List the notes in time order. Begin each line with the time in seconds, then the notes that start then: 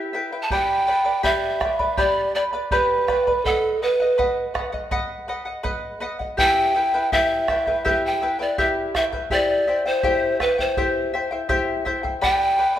Already playing: E4 G4 B4 E5 G5
0.13 E4 B4 E5 G5
0.32 E4 B4 G5
0.43 A5
0.50 G4 B4 D5 G5 B5, bombo low
0.87 B4 D5 G5 B5
1.05 B4 D5 B5
1.23 G4 B4 D5 E5 G5 B5, bombo low
1.60 B4 D5 G5 B5, bombo rim, bombo low
1.79 B4 D5 B5, bombo low
1.97 G4 B4 D5 G5 B5, bombo low
2.35 B4 D5 G5 B5
2.53 B4 D5 B5
2.71 G4 B4 D5 G5 B5, bombo low
3.08 B4 D5 G5 B5, bombo rim, bombo low
3.27 B4 D5 B5, bombo low
3.45 A4 B4 D#5 F#5, bombo low
3.82 B4 D#5 F#5
4.00 D#5 F#5
4.18 B4 D#5 F#5, bombo low
4.54 B4 D#5 F#5, bombo rim, bombo low
4.72 D#5 F#5, bombo low
4.91 B4 D#5 F#5, bombo low
5.28 B4 D#5 F#5
5.45 D#5 F#5
5.63 B4 D#5 F#5, bombo low
6.00 B4 D#5 F#5
6.19 D#5 F#5, bombo low
6.37 E4 G4 B4 E5 G5, bombo low
6.75 E4 B4 E5 G5
6.94 E4 B4 G5
7.12 E4 G4 B4 E5 G5, bombo low
7.48 E4 B4 E5 G5, bombo rim, bombo low
7.67 E4 B4 G5, bombo low
7.85 E4 G4 B4 E5 G5, bombo low
8.06 G5
8.21 E4 B4 E5 G5
8.39 E4 B4 D5 G5
8.58 E4 G4 B4 E5 G5, bombo low
8.95 E4 B4 E5 G5, bombo rim, bombo low
9.12 E4 B4 G5, bombo low
9.30 E4 G4 C5 D5 E5 G5, bombo low
9.67 E4 C5 E5 G5
9.86 E4 C5 G5
10.03 E4 G4 C5 E5 G5, bombo low
10.40 E4 B4 C5 E5 G5, bombo rim, bombo low
10.58 E4 C5 G5, bombo low
10.77 E4 G4 C5 E5 G5, bombo low
11.14 E4 C5 E5 G5
11.31 E4 C5 G5
11.49 E4 G4 C5 E5 G5, bombo low
11.85 E4 C5 E5 G5, bombo low
12.03 E4 C5 G5, bombo low
12.21 G4 B4 D5 G5 B5, bombo low
12.58 B4 D5 G5 B5
12.76 B5